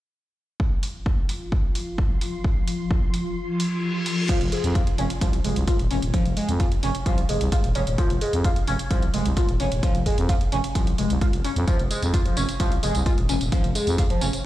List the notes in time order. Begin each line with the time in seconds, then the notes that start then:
0.60 F3 F4, kick
0.83 open hi-hat
1.06 kick
1.29 open hi-hat
1.52 kick
1.75 open hi-hat
1.98 kick
2.21 open hi-hat
2.44 kick
2.68 open hi-hat
2.91 kick
3.14 open hi-hat
3.37 reverse cymbal
3.60 open hi-hat
4.06 open hi-hat
4.29 F3, kick, closed hi-hat, crash
4.41 F1, closed hi-hat
4.52 G#3, open hi-hat
4.64 F2, closed hi-hat
4.75 F4, kick, closed hi-hat
4.87 closed hi-hat
4.98 F1 C#4, open hi-hat
5.10 closed hi-hat
5.21 C2 F3, kick, closed hi-hat
5.33 closed hi-hat
5.44 F1 G#3, open hi-hat
5.56 C2, closed hi-hat
5.68 F4, kick, closed hi-hat
5.79 D#1, closed hi-hat
5.91 F1 C#4, open hi-hat
6.02 D#1, closed hi-hat
6.14 F3, kick, closed hi-hat
6.26 F1, closed hi-hat
6.37 G#3, open hi-hat
6.49 F2, closed hi-hat
6.60 F4, kick, closed hi-hat
6.72 closed hi-hat
6.83 F1 C#4, open hi-hat
6.95 closed hi-hat
7.06 C2 F3, kick, closed hi-hat
7.18 closed hi-hat
7.29 F1 G#3, open hi-hat
7.41 C2, closed hi-hat
7.52 F4, kick, closed hi-hat
7.64 D#1, closed hi-hat
7.75 F1 C#4, open hi-hat
7.87 D#1, closed hi-hat
7.98 F3, kick, closed hi-hat
8.10 F1, closed hi-hat
8.21 G#3, open hi-hat
8.33 F2, closed hi-hat
8.44 F4, kick, closed hi-hat
8.56 closed hi-hat
8.68 F1 C#4, open hi-hat
8.79 closed hi-hat
8.91 C2 F3, kick, closed hi-hat
9.02 closed hi-hat
9.14 F1 G#3, open hi-hat
9.25 C2, closed hi-hat
9.37 F4, kick, closed hi-hat
9.49 D#1, closed hi-hat
9.60 F1 C#4, open hi-hat
9.72 D#1, closed hi-hat
9.83 F3, kick, closed hi-hat
9.95 F1, closed hi-hat
10.06 G#3, kick, open hi-hat
10.18 F2, closed hi-hat
10.29 F4, kick, closed hi-hat
10.41 closed hi-hat
10.52 F1 C#4, open hi-hat
10.64 closed hi-hat
10.75 C2 F3, kick, closed hi-hat
10.87 closed hi-hat
10.98 F1 G#3, open hi-hat
11.10 C2, closed hi-hat
11.21 F4, kick, closed hi-hat
11.33 F1, closed hi-hat
11.44 C#4, open hi-hat
11.56 F2, closed hi-hat
11.68 F3, kick, closed hi-hat, tambourine
11.79 F1, closed hi-hat
11.91 G#3, open hi-hat, tambourine
12.02 F2, closed hi-hat, tambourine
12.14 F4, kick, closed hi-hat, tambourine
12.25 F3, closed hi-hat
12.37 F1 C#4, open hi-hat, tambourine
12.49 closed hi-hat, tambourine
12.60 C2 F3, kick, closed hi-hat, tambourine
12.72 closed hi-hat
12.83 F1 G#3, open hi-hat, tambourine
12.95 C2, closed hi-hat, tambourine
13.06 F4, kick, closed hi-hat
13.18 D#1, closed hi-hat
13.29 F1 C#4, open hi-hat, tambourine
13.41 D#1, closed hi-hat, tambourine
13.52 F3, kick, closed hi-hat, tambourine
13.64 F1, closed hi-hat
13.75 G#3, open hi-hat, tambourine
13.87 F2, closed hi-hat, tambourine
13.98 F4, kick, closed hi-hat
14.10 F3, closed hi-hat
14.21 F1 C#4, open hi-hat, tambourine
14.33 closed hi-hat, tambourine